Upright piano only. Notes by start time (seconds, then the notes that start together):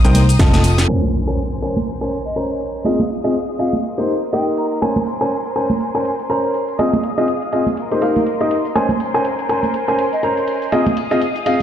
0.05 D#4 A#4 C5 G5
0.39 F4 A4 D#5 A5
0.89 C#4 A#4 C5 G#5
1.27 C#4 A#4 C5 G#5
1.62 C#4 A#4 C5 G#5
2.01 C#4 A#4 C5 G#5
2.36 C#4 A#4 C5 A#5
2.85 C4 F4 G#4 D#5
3.24 C4 F4 G#4 D#5
3.59 C4 F4 G#4 D#5
3.98 A#3 D#4 G4 C5
4.33 A#3 D#4 G4 D#5
4.82 C#4 A#4 C5 G#5
5.21 C#4 A#4 C5 G#5
5.56 C#4 A#4 C5 G#5
5.95 C#4 A#4 C5 G#5
6.30 C#4 A#4 C5 A#5
6.79 C4 F4 G#4 D#5
7.18 C4 F4 G#4 D#5
7.53 C4 F4 G#4 D#5
7.91 A#3 D#4 G4 C5
8.02 A#3 D#4 G4 F5
8.41 A#3 D#4 G4 D#5
8.75 C#4 A#4 C5 G#5
9.14 C#4 A#4 C5 G#5
9.49 C#4 A#4 C5 G#5
9.88 C#4 A#4 C5 G#5
10.23 C#4 A#4 C5 A#5
10.72 C4 F4 G#4 D#5
11.11 C4 F4 G#4 D#5
11.46 C4 F4 G#4 D#5